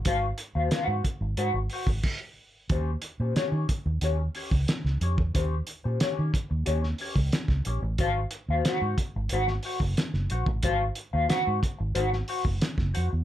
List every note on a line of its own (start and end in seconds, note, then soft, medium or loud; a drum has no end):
0.05 0.31 G#1 medium
0.05 0.25 F#4 medium
0.05 0.26 C5 medium
0.05 0.26 F5 loud
0.05 kick loud
0.05 closed hi-hat loud
0.38 muted clean electric guitar stroke soft
0.38 closed hi-hat medium
0.55 0.68 D#2 medium
0.55 0.70 F#4 soft
0.55 0.71 C5 medium
0.55 0.70 F5 medium
0.71 0.84 F4 medium
0.71 0.85 B4 medium
0.71 0.85 F5 medium
0.71 snare loud
0.71 closed hi-hat medium
0.84 1.00 G#2 medium
0.84 1.02 F#4 medium
0.84 1.02 C5 medium
0.84 1.02 F#5 medium
1.04 muted clean electric guitar stroke soft
1.04 kick medium
1.04 closed hi-hat medium
1.21 1.34 G#1 loud
1.21 muted clean electric guitar stroke soft
1.37 1.50 G#2 medium
1.37 1.57 F#4 medium
1.37 1.56 C5 loud
1.37 1.55 F#5 medium
1.37 closed hi-hat medium
1.54 1.67 G#1 medium
1.54 muted clean electric guitar stroke medium
1.70 1.87 F#4 medium
1.70 1.87 C5 medium
1.70 open hi-hat medium
1.74 1.88 F#5 medium
1.86 1.99 G#1 medium
1.86 kick loud
2.03 kick loud
2.03 crash medium
2.70 2.95 D#2 loud
2.70 2.90 C#4 medium
2.70 2.90 G4 medium
2.70 2.90 C5 loud
2.70 kick loud
2.70 closed hi-hat medium
3.02 muted clean electric guitar stroke soft
3.02 closed hi-hat medium
3.20 3.32 A#2 medium
3.20 3.35 C#4 medium
3.20 3.35 G4 medium
3.20 3.35 C5 medium
3.35 3.66 C#4 medium
3.35 3.67 G4 medium
3.35 3.67 C#5 loud
3.35 muted fingered electric bass stroke medium
3.35 snare loud
3.35 closed hi-hat medium
3.52 3.65 D#3 medium
3.69 muted clean electric guitar stroke soft
3.69 kick medium
3.69 closed hi-hat medium
3.86 3.98 D#2 medium
3.86 muted clean electric guitar stroke soft
4.01 4.27 D#2 loud
4.01 4.22 C#4 medium
4.01 4.19 G4 medium
4.01 4.19 C#5 medium
4.01 closed hi-hat medium
4.19 muted clean electric guitar stroke medium
4.35 4.50 C#4 medium
4.35 4.51 G4 medium
4.35 4.51 C#5 medium
4.35 open hi-hat medium
4.51 4.64 C#2 medium
4.51 muted clean electric guitar stroke soft
4.51 kick loud
4.68 muted clean electric guitar stroke soft
4.68 snare loud
4.68 closed hi-hat medium
4.84 4.97 C#2 medium
4.84 snare soft
5.01 5.18 F2 medium
5.01 5.17 C#4 medium
5.01 5.17 G4 medium
5.01 5.17 C#5 medium
5.01 closed hi-hat medium
5.18 5.31 E2 medium
5.18 muted clean electric guitar stroke medium
5.18 kick loud
5.34 5.60 D#2 loud
5.34 5.54 C#4 medium
5.34 5.54 G4 loud
5.34 5.55 C5 loud
5.34 kick loud
5.34 closed hi-hat loud
5.67 muted clean electric guitar stroke soft
5.67 closed hi-hat medium
5.84 5.97 A#2 medium
5.84 6.00 C#4 medium
5.84 6.00 G4 medium
5.84 5.99 C5 medium
6.00 6.31 C#4 medium
6.00 6.31 G4 medium
6.00 6.32 C#5 loud
6.00 muted fingered electric bass stroke medium
6.00 snare loud
6.00 closed hi-hat medium
6.19 6.31 D#3 medium
6.34 muted clean electric guitar stroke soft
6.34 kick medium
6.34 closed hi-hat medium
6.50 6.63 D#2 medium
6.50 muted clean electric guitar stroke medium
6.66 6.92 D#2 medium
6.66 6.86 C#4 medium
6.66 6.83 G4 loud
6.66 6.83 C#5 loud
6.66 closed hi-hat medium
6.84 muted clean electric guitar stroke soft
6.84 snare soft
6.98 7.15 C#4 medium
6.98 7.16 G4 medium
6.98 7.16 C#5 medium
6.98 open hi-hat medium
7.16 7.29 C#2 medium
7.16 muted clean electric guitar stroke soft
7.16 kick medium
7.32 muted clean electric guitar stroke soft
7.32 snare loud
7.32 closed hi-hat medium
7.48 7.61 C#2 medium
7.48 kick medium
7.48 snare soft
7.65 7.79 A#1 medium
7.65 7.81 C#4 medium
7.65 7.82 G4 medium
7.65 7.82 C#5 medium
7.65 closed hi-hat medium
7.82 7.95 A1 medium
7.82 muted clean electric guitar stroke medium
7.98 8.24 G#1 loud
7.98 8.19 F#4 medium
7.98 8.19 C5 loud
7.98 8.19 F5 loud
7.98 kick loud
7.98 closed hi-hat loud
8.31 muted clean electric guitar stroke soft
8.31 closed hi-hat medium
8.49 8.61 D#2 medium
8.49 8.65 F#4 medium
8.49 8.65 C5 medium
8.49 8.65 F5 medium
8.65 8.96 F#4 medium
8.65 8.96 C5 medium
8.65 8.97 F#5 medium
8.65 snare loud
8.65 closed hi-hat medium
8.82 8.94 G#2 medium
8.98 kick medium
8.98 closed hi-hat medium
9.16 9.28 G#1 medium
9.16 muted clean electric guitar stroke medium
9.29 9.57 G#1 medium
9.29 9.51 F#4 medium
9.29 9.49 C5 medium
9.29 9.49 F#5 loud
9.29 closed hi-hat medium
9.48 muted clean electric guitar stroke medium
9.48 snare soft
9.63 9.80 F#4 medium
9.63 9.80 C5 medium
9.63 9.81 F#5 medium
9.63 open hi-hat medium
9.80 9.93 F#1 medium
9.80 muted clean electric guitar stroke soft
9.80 kick loud
9.97 muted clean electric guitar stroke soft
9.97 snare loud
9.97 closed hi-hat medium
10.14 10.26 F#1 medium
10.14 snare soft
10.30 10.44 A#1 medium
10.30 10.46 F#4 medium
10.30 10.46 C5 medium
10.30 10.46 F#5 medium
10.30 closed hi-hat medium
10.46 10.60 A1 medium
10.46 muted clean electric guitar stroke soft
10.46 kick loud
10.63 10.89 G#1 loud
10.63 10.83 F#4 medium
10.63 10.84 C5 loud
10.63 10.84 F5 loud
10.63 kick loud
10.63 closed hi-hat loud
10.95 muted clean electric guitar stroke soft
10.95 closed hi-hat medium
11.13 11.26 D#2 medium
11.13 11.27 F#4 soft
11.13 11.29 C5 medium
11.13 11.28 F5 medium
11.29 11.60 F#4 medium
11.29 11.60 C5 medium
11.29 11.60 F#5 loud
11.29 snare loud
11.29 closed hi-hat medium
11.47 11.60 G#2 loud
11.63 kick medium
11.63 closed hi-hat medium
11.79 11.93 G#1 medium
11.79 muted clean electric guitar stroke medium
11.95 12.21 G#1 loud
11.95 12.15 F#4 medium
11.95 12.12 C5 medium
11.95 12.12 F#5 loud
11.95 closed hi-hat medium
12.12 muted clean electric guitar stroke soft
12.12 snare soft
12.28 12.44 F#4 medium
12.28 12.45 C5 medium
12.28 12.45 F#5 medium
12.28 open hi-hat medium
12.45 12.58 F#1 medium
12.45 muted clean electric guitar stroke soft
12.45 kick medium
12.61 muted clean electric guitar stroke soft
12.61 snare loud
12.61 closed hi-hat medium
12.78 12.91 F#1 loud
12.78 kick medium
12.78 snare soft
12.94 13.09 F2 medium
12.94 13.10 F#4 medium
12.94 13.10 C5 medium
12.94 13.10 F#5 medium
12.94 closed hi-hat medium
13.10 13.24 E2 medium
13.10 muted clean electric guitar stroke soft